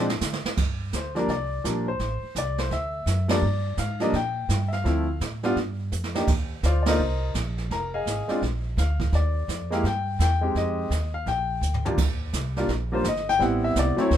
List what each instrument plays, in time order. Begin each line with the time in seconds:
Already playing: upright bass A#2
0.10 snare
0.21 upright bass D3, snare, hi-hat pedal
0.33 snare
0.44 muted upright bass stroke, snare
0.57 upright bass G2, brush sweep, kick, snare, crash
0.93 upright bass D2, grand piano C5, kick, snare, hi-hat pedal
1.15 grand piano F3 G3 A#3 D4 A#4, snare
1.28 upright bass C2, grand piano D5, brush sweep, kick, snare
1.64 upright bass A#1, grand piano F3 G3 A#3 D4, kick, snare, hi-hat pedal
1.88 grand piano C5
1.99 upright bass A1, brush sweep, kick, snare
2.23 muted upright bass stroke
2.35 upright bass C2, grand piano D5, kick, snare, hi-hat pedal
2.58 grand piano C5, snare
2.70 upright bass D2, grand piano E5, brush sweep, kick, snare
3.06 upright bass F#2, kick, snare, hi-hat pedal
3.28 grand piano F3 G3 A#3 D4 D5, snare, ride
3.42 upright bass G2, brush sweep
3.77 upright bass G#2, grand piano F5, kick, snare, hi-hat pedal
4.00 grand piano F3 G3 A#3 D4 D#5, snare
4.13 upright bass A#2, grand piano G5, brush sweep, kick, snare
4.49 upright bass G2, kick, snare, hi-hat pedal
4.68 grand piano E5, snare
4.73 grand piano F5
4.84 upright bass D2, grand piano F3 A3 C4 E4, brush sweep, kick, snare
5.21 upright bass A2, kick, snare, hi-hat pedal
5.43 grand piano G3 B3 D4 F4, snare
5.56 upright bass G2, brush sweep, kick, snare
5.92 upright bass F2, hi-hat pedal
6.04 snare
6.14 grand piano A#3 D4 D#4 G4, snare
6.27 upright bass D#2, brush sweep, kick, snare, crash
6.63 upright bass D2, grand piano F4 C5 D5 F5, kick, snare, hi-hat pedal
6.83 grand piano A#3 D4 D5, snare, ride
6.87 grand piano D#4 F4 A#4 C5 D#5
6.99 upright bass C2, brush sweep
7.34 upright bass A#1, kick, snare, hi-hat pedal
7.58 snare
7.70 upright bass F1, grand piano A#4 A#5, brush sweep, kick, snare
7.94 grand piano G#4 D#5 F5 G#5
8.06 upright bass G#1, kick, snare, hi-hat pedal
8.28 grand piano G#3 C4 D4 F4, muted upright bass stroke, snare
8.42 upright bass A#1, brush sweep, kick, snare
8.77 upright bass D2, grand piano F5, kick, snare, hi-hat pedal
9.00 kick, snare
9.12 upright bass D#2, grand piano D5, brush sweep, kick, snare
9.48 upright bass F2, kick, snare, hi-hat pedal
9.70 grand piano G#3 A#3 E4 G4 F5, snare
9.84 upright bass G2, grand piano G5, brush sweep, kick, snare
10.19 upright bass E2, grand piano G5, kick, snare, hi-hat pedal
10.41 grand piano G#3 C4 D#4 G4
10.55 upright bass F2, grand piano D#5, brush sweep, kick, snare
10.90 upright bass D#2, kick, snare, hi-hat pedal
11.14 grand piano F5
11.26 upright bass A#1, grand piano G5, brush sweep, kick, snare
11.61 upright bass D2, hi-hat pedal
11.74 floor tom
11.85 grand piano D#2 G3 A#3 D4 F4, floor tom
11.98 upright bass D#2, brush sweep, kick, snare, crash
12.33 upright bass C2, kick, snare, hi-hat pedal
12.56 grand piano G3 A#3 D4 F4, snare
12.68 upright bass A#1, brush sweep, kick, snare
12.92 grand piano G3 A#3 D4 F4 C5
13.04 upright bass G1, grand piano D#5, kick, snare, hi-hat pedal
13.16 snare
13.29 grand piano G5, snare
13.39 upright bass A1, grand piano G3 B3 C4 E4 F#5, brush sweep, kick, snare
13.64 grand piano E5
13.76 upright bass C2, grand piano D5, kick, snare, hi-hat pedal
13.96 grand piano F#3 A3 C4 E4, muted upright bass stroke, snare
14.01 grand piano C#5
14.11 upright bass D2, grand piano C5, brush sweep, kick, snare